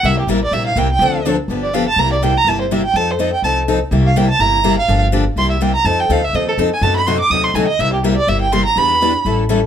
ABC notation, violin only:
X:1
M:4/4
L:1/8
Q:"Swing" 1/4=248
K:Cmix
V:1 name="Violin"
e G B d e f g g- | g2 z3 d f a | b d g b a c e g | a c _e g a z3 |
z f g a b3 f- | f z3 c' e g b | a g f e _e A z _a | a =b c' d' ^d' c' _a ^d |
e G B d e g c' b | =b4 z4 |]